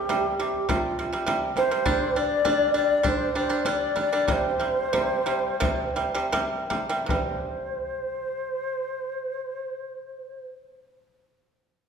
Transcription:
Already playing: G4
0.09 C3 G3, frame drum
0.38 C3 G3 G4, frame drum
0.54 frame drum
0.68 C3 G3 F4, frame drum
0.99 C3 G3
1.13 C3 G3, frame drum
1.26 C3 G3, frame drum
1.56 C3 G3 C5, frame drum
1.71 C3 G3
1.85 G3 D4, frame drum
2.16 G3 D4 D5
2.45 G3 D4, frame drum
2.74 G3 D4 D5, frame drum
2.90 frame drum
3.03 G3 D4 C5, frame drum
3.35 G3 D4 C5
3.49 G3 D4, frame drum
3.65 G3 D4 D5, frame drum
3.96 G3 D4, frame drum
4.00 D5
4.13 G3 D4
4.28 C3 G3, frame drum
4.32 C5
4.60 C3 G3
4.93 C3 G3, frame drum
5.26 C3 G3, frame drum
5.45 frame drum
5.60 C3 G3, frame drum
5.96 C3 G3
6.15 C3 G3, frame drum
6.32 C3 G3, frame drum
6.70 C3 G3, frame drum
6.89 C3 G3
7.06 C3 C5, frame drum
7.10 G3

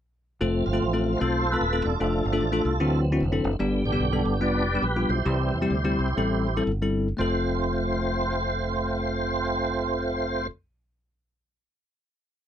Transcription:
0.41 F1 F3 A3 C4 F4 A4
0.66 G1 A3 C4 F4
0.73 A3 C4 F4 A4
0.82 A1
0.93 A3 C4 F4 A4
1.06 F3 A3 C4
1.19 B1 A3 C4 F4 A4 C5
1.52 A3 C4 F4 A4 B4
1.61 D#1
1.73 A3 C4 F4 A4
1.84 E1 D4 F4 A4
2.00 F1 F3 A3 D4 F4 A4
2.25 G1
2.33 A3 D4 F4 A4
2.40 A1
2.52 A3 D4 F4 A4
2.65 C2
2.80 D2 D3 E3 F#3 C4 D4 E4 F#4
3.12 C4 D4 E4 F#4
3.20 F1
3.32 C4 D4 E4 A4
3.44 F#1
3.59 G1 G2 D3 G3 B3 D4 G4
3.85 A1 B3 D4 G4
3.92 G3 B3 D4 G4
4.00 B1
4.13 G3 B3 D4 A4
4.25 G1
4.40 F1 G3 B3 D4 F4 G4 B4 D5
4.75 G3 B3 D4 G4
4.82 A#1 B4
4.96 G3 B3 D4 F4
5.09 B1 E4 G4 C5
5.25 C2 C3 E3 G3 C4 E4 G4
5.54 E2
5.62 G3 C4 E4 G4
5.71 D2
5.85 G3 C4 E4 G4
5.99 C2
6.17 A1 G3 C4 E4 A4
6.57 G3 C4 E4 A4
6.67 G1
6.82 G3 C4 E4 A4
7.17 F1 F2 A3 C4 F4 C5
7.21 A4

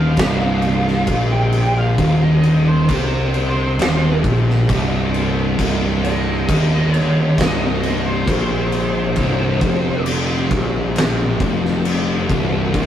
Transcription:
Already playing: D#1 D#2 C3 D3 G3 F5
0.17 C1 C2, kick, snare, crash
0.62 crash
0.87 snare
1.07 A#1 A#2, kick, crash
1.32 G5
1.52 crash
1.78 F5
1.98 D#1 D#2, kick, crash
2.22 D#5
2.43 crash
2.68 C5
2.89 C2 C3, kick, crash
3.34 C5, crash
3.77 D#1 D#2, crash
3.82 snare
4.24 A#1 A#2, kick, crash
4.50 snare
4.69 C1 C2, kick, crash
5.14 crash
5.59 C1 C2, kick, crash
6.04 D#5, crash
6.49 D#1 D#2, kick, crash
6.93 C#5, crash
7.38 C1 C2 D#5, kick, snare, crash
7.61 D#5
7.83 crash
8.06 C5
8.28 A#1 A#2 C5, kick, crash
8.72 crash
9.16 C1 C2, kick, crash
9.61 F1 F2, kick, crash
10.06 crash
10.51 A#1 A#2, kick, crash
10.96 snare, crash
11.40 F1 F2, kick, crash
11.65 snare
11.85 crash
12.29 C1 C2, kick, crash
12.74 C1 C2, kick, crash

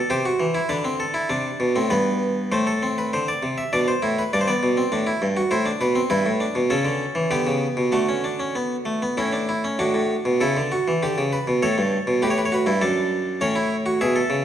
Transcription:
0.10 C3 G4 C5
0.25 F#4
0.40 E3
0.55 E4
0.69 D3 D4 B4
0.85 C4
1.00 A4
1.14 E4
1.30 C3 D4
1.60 B2
1.76 A2 C4
1.90 G2 B3 B4
2.52 A2 A3 C5
2.67 A4
2.83 C4
2.98 B4
3.13 D3 C5
3.28 D5
3.43 C3
3.58 E5
3.73 B2 D4 D5
3.88 C5
4.02 A2 E4
4.19 B4
4.33 G2 D4 D5
4.41 C5
4.47 B3 D5
4.63 B2
4.77 C4
4.92 A2 D4
5.07 E4
5.22 G2
5.37 F#4
5.51 A2 E4 C5
5.66 D4
5.81 B2 B4
5.95 C4
6.10 G2 E4 B4
6.26 A2
6.40 D4
6.55 B2
6.70 C#3 C#4 A4
6.85 D3
7.15 E3
7.31 D3 B3 G4
7.47 C#3
7.77 B2
7.92 D3 A3 F#4
8.09 C#4
8.24 D4
8.39 C#4
8.55 B3
8.85 A3
9.02 B3
9.17 A2 C#4 E4
9.33 D4
9.49 E4
9.64 C#4
9.79 A2 D4 F#4
9.94 A2
10.25 B2
10.41 C#3 E4 A4
10.57 D3
10.72 F#4
10.88 E3
11.03 D3 G4
11.18 C#3
11.32 B4
11.47 B2
11.62 A2 A4 C#5
11.78 G2
12.07 B2
12.22 A2 G4 B4
12.30 C#5
12.38 B4
12.45 C#5
12.52 F#4 B4
12.66 G2 E4
12.81 F#2 D4 A4
13.41 A2 C#4 C#5
13.56 E4
13.86 F#4
14.01 B2 G#4 E5
14.16 A4
14.30 C#3

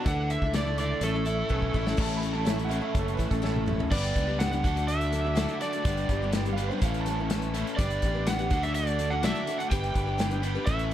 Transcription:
Already playing: D6
0.04 D2 D3 E3 A3 E4 A4 D5 E5 F#5, kick, closed hi-hat
0.09 E4 A4
0.30 E5, closed hi-hat
0.42 C#2 A3 E4 A4, kick
0.53 D3 E3 A3 E4 A4 D5, snare, closed hi-hat
0.66 A3 E4 A4
0.78 D3 E4 A4 D5, closed hi-hat
1.00 A1 A2 E3 A3 C#4 E4 A4 C#5 C#6, closed hi-hat
1.14 A3 C#4 E4 A4
1.25 A3 C#4 E4 A4, closed hi-hat
1.49 B1 A2 E3 A3 C#4 E4 A4 B4, kick
1.62 kick
1.74 A1 A3 C#4 E4 A4, kick
1.86 A3 C#4 E4 A4, snare
1.97 A1 A2 E3 A3 C#4 E4 A4 C#5 E5 A5 C#6, kick, crash
2.11 closed hi-hat
2.17 B5
2.21 A3 C#4 E4 A4, closed hi-hat
2.33 A3 C#4 E4 A4 A5
2.45 A2 E3 A3 C#4 E4 A4 C#5 E5, snare, closed hi-hat
2.59 closed hi-hat
2.65 A3 F#5
2.69 A2 E3 C#4 E4 A4, closed hi-hat
2.80 A3 C#4 E4 A4 E5
2.94 F#1 C#4 E4 A4 C#5, kick, closed hi-hat
2.99 A4
3.08 closed hi-hat
3.14 A3 B4
3.18 A1 C#4 E4 A4, kick, closed hi-hat
3.30 A1 A3 C#4 E4 A4, kick, closed hi-hat
3.42 A2 E3 A3 C#4 E4 A4 C#5, snare
3.56 high tom
3.66 A3 C#4 E4 A4, mid tom
3.79 A3 C#4 E4 A4, floor tom
3.91 G1 G2 D3 G3 B3 D4 G4 B4 D5 G5 D6, kick, crash
4.04 closed hi-hat
4.14 C#2 G3 B3 D4 G4, kick, closed hi-hat
4.27 G3 B3 D4 G4
4.39 G2 D3 G3 B3 D4 G4 F#5, snare, closed hi-hat
4.52 G3 B3 D4 G4, closed hi-hat
4.63 D2 D3 F#3 A3 D4 F#4 A4 F#5, kick, closed hi-hat
4.75 A3 D4 F#4, closed hi-hat
4.88 E5, closed hi-hat
5.01 closed hi-hat
5.12 F#3 A3 D4 F#4, closed hi-hat
5.24 A3 D4 F#4
5.35 D3 F#3 A3 D4 F#4, snare, closed hi-hat
5.40 A4
5.48 closed hi-hat
5.61 F#3 A3 D4 F#4 D5, closed hi-hat
5.73 A3 D4 F#4, closed hi-hat
5.83 G1 G2 D3 G3 B4 G5, kick, closed hi-hat
5.87 B3 D4 G4 B4
5.97 closed hi-hat
6.09 G1 G3 B3 D4 G4, kick, closed hi-hat
6.22 G3 B3 D4 G4
6.33 G2 D3 G3 B3 D4 G4 D5, snare, closed hi-hat
6.46 G3 B3 D4 G4, closed hi-hat
6.53 F5
6.57 G3 B3 D4 G4 B4, closed hi-hat
6.62 B4
6.68 D4 G4 C5
6.72 G3 B3
6.81 A1 A2 A3 C#4 E4 A4 B4 F5 A5 C#6, kick, closed hi-hat
6.94 closed hi-hat
7.00 A5
7.06 A3 C#4 E4 B4, snare, closed hi-hat
7.19 C#4 E4 B4
7.30 A3 C#4 E4 B4, snare, closed hi-hat
7.42 closed hi-hat
7.54 A2 A3 C#4 E4 A4, closed hi-hat
7.58 B4
7.67 closed hi-hat
7.76 G1 G3 B3 D4 G4 B4 D5 G5 D6, kick, closed hi-hat
7.90 closed hi-hat
8.02 A1 B3 D4 G4 B4, kick, closed hi-hat
8.15 D4 G4 B4
8.27 G3 B3 D4 G4 B4 F#5, snare, closed hi-hat
8.38 D4 G4 B4, closed hi-hat
8.50 D2 D3 A3 D4 F#4 A4 D5 F#5, kick, closed hi-hat
8.63 A3 D4 F#4 D5 E5, closed hi-hat
8.74 D5, closed hi-hat
8.87 closed hi-hat
8.99 A3 D4 F#4 D5, closed hi-hat
9.10 A3 D4 F#4 D5 F#5
9.23 D3 F#3 A3 D4 F#4 A4 D5 E5, snare, closed hi-hat
9.35 closed hi-hat
9.47 A3 D4 F#4 D5, closed hi-hat
9.58 A3 D4 F#4 D5 F#5, closed hi-hat
9.70 G1 G3 B3 D4 G4 B4 G5, kick, closed hi-hat
9.84 closed hi-hat
9.94 G1 B3 D4 G4 B4, kick, closed hi-hat
10.06 D4 G4 B4
10.18 G3 B3 D4 G4 B4, snare, closed hi-hat
10.31 D4 G4 B4, closed hi-hat
10.43 G3 B3 D4 G4 B4, closed hi-hat
10.55 D4 G4 B4
10.66 A1 A2 A3 C#4 E4 A4 B4 E5 C#6, kick, closed hi-hat
10.70 A5
10.79 closed hi-hat

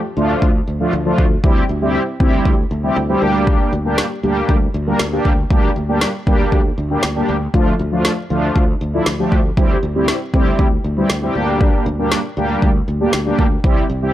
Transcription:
0.17 D2 F3 A3 D4 F4
0.42 D2, kick
0.68 D2
0.80 F3 A3 D4 F4
0.93 D2
1.06 F3 A3 D4 F4
1.18 D2, kick
1.44 D2 G3 C4 E4 G4, kick
1.69 D2
1.82 G3 C4 E4 G4
2.20 D2 G3 C4 E4 G4, kick
2.45 D2, kick
2.71 D2
2.83 G3 C4 E4 G4
2.96 D2
3.09 G3 C4 E4 G4
3.22 D2 G3 A#3 D4 G4
3.47 kick
3.73 D2
3.85 G3 A#3 D4 G4
3.98 snare
4.23 D2 G3 A#3 D4 G4
4.49 D2, kick
4.74 D2
4.87 G3 A#3 D4 A#4
4.99 D2, snare
5.12 G3 A#3 D4 G4
5.25 D2, kick
5.51 D2 G3 A#3 D4 G4, kick
5.76 D2
5.89 G3 A#3 D4 G4
6.01 snare
6.27 D2 G3 A#3 D4 G4, kick
6.52 D2, kick
6.78 D2
6.90 G3 A#3 D4 G4
7.03 D2, snare
7.16 G3 A#3 D4 G4
7.29 D2
7.54 D2 F3 A3 D4 F4, kick
7.79 D2
7.92 F3 A3 D4 F4
8.05 snare
8.30 D2 F3 A3 D4 F4
8.56 D2, kick
8.81 D2
8.94 F3 A3 D4 E4
9.06 D2, snare
9.19 F3 A3 D4 G4
9.32 D2, kick
9.57 D2 G3 C4 E4 G4, kick
9.83 D2
9.96 G3 C4 E4 G4
10.08 snare
10.34 D2 G3 C4 E4 G4, kick
10.59 D2, kick
10.84 D2
10.97 G3 C4 E4 G4
11.10 D2, snare
11.23 G3 C4 E4 G4
11.35 D2 G3 A#3 D4 G4
11.61 kick
11.86 D2
11.99 G3 A#3 D4 G4
12.12 snare
12.37 D2 G3 A#3 D4 G4
12.62 D2, kick
12.88 D2
13.01 G3 A#3 D4 G4
13.13 D2, snare
13.26 G3 A#3 D4 G4
13.39 D2, kick
13.64 C2 G3 C4 E4 G4, kick
13.90 C2
14.02 G3 C4 E4 G4

